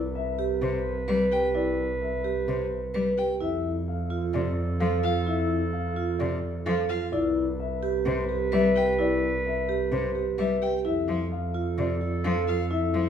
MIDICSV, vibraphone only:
0, 0, Header, 1, 2, 480
1, 0, Start_track
1, 0, Key_signature, 0, "major"
1, 0, Tempo, 465116
1, 1598, Time_signature, 4, 2, 24, 8
1, 13510, End_track
2, 0, Start_track
2, 0, Title_t, "Vibraphone"
2, 0, Program_c, 0, 11
2, 398, Note_on_c, 0, 67, 82
2, 710, Note_off_c, 0, 67, 0
2, 1115, Note_on_c, 0, 71, 83
2, 1356, Note_on_c, 0, 67, 55
2, 1429, Note_off_c, 0, 71, 0
2, 1594, Note_on_c, 0, 64, 58
2, 1669, Note_off_c, 0, 67, 0
2, 1908, Note_off_c, 0, 64, 0
2, 2316, Note_on_c, 0, 67, 75
2, 2629, Note_off_c, 0, 67, 0
2, 3039, Note_on_c, 0, 71, 71
2, 3278, Note_on_c, 0, 67, 52
2, 3350, Note_off_c, 0, 71, 0
2, 3515, Note_on_c, 0, 64, 61
2, 3590, Note_off_c, 0, 67, 0
2, 3829, Note_off_c, 0, 64, 0
2, 4235, Note_on_c, 0, 65, 74
2, 4549, Note_off_c, 0, 65, 0
2, 4958, Note_on_c, 0, 69, 78
2, 5198, Note_on_c, 0, 65, 60
2, 5270, Note_off_c, 0, 69, 0
2, 5436, Note_on_c, 0, 64, 67
2, 5510, Note_off_c, 0, 65, 0
2, 5749, Note_off_c, 0, 64, 0
2, 6155, Note_on_c, 0, 65, 73
2, 6469, Note_off_c, 0, 65, 0
2, 6876, Note_on_c, 0, 69, 79
2, 7116, Note_on_c, 0, 65, 63
2, 7189, Note_off_c, 0, 69, 0
2, 7357, Note_on_c, 0, 64, 74
2, 7429, Note_off_c, 0, 65, 0
2, 7669, Note_off_c, 0, 64, 0
2, 8075, Note_on_c, 0, 67, 85
2, 8389, Note_off_c, 0, 67, 0
2, 8554, Note_on_c, 0, 67, 65
2, 8794, Note_on_c, 0, 71, 89
2, 8868, Note_off_c, 0, 67, 0
2, 9035, Note_on_c, 0, 67, 57
2, 9108, Note_off_c, 0, 71, 0
2, 9275, Note_on_c, 0, 64, 70
2, 9348, Note_off_c, 0, 67, 0
2, 9589, Note_off_c, 0, 64, 0
2, 9998, Note_on_c, 0, 67, 74
2, 10310, Note_off_c, 0, 67, 0
2, 10478, Note_on_c, 0, 67, 56
2, 10715, Note_on_c, 0, 71, 73
2, 10790, Note_off_c, 0, 67, 0
2, 10957, Note_on_c, 0, 67, 60
2, 11029, Note_off_c, 0, 71, 0
2, 11195, Note_on_c, 0, 64, 72
2, 11269, Note_off_c, 0, 67, 0
2, 11509, Note_off_c, 0, 64, 0
2, 11913, Note_on_c, 0, 65, 73
2, 12228, Note_off_c, 0, 65, 0
2, 12395, Note_on_c, 0, 65, 59
2, 12636, Note_on_c, 0, 69, 81
2, 12709, Note_off_c, 0, 65, 0
2, 12873, Note_on_c, 0, 65, 56
2, 12949, Note_off_c, 0, 69, 0
2, 13113, Note_on_c, 0, 64, 72
2, 13188, Note_off_c, 0, 65, 0
2, 13428, Note_off_c, 0, 64, 0
2, 13510, End_track
0, 0, End_of_file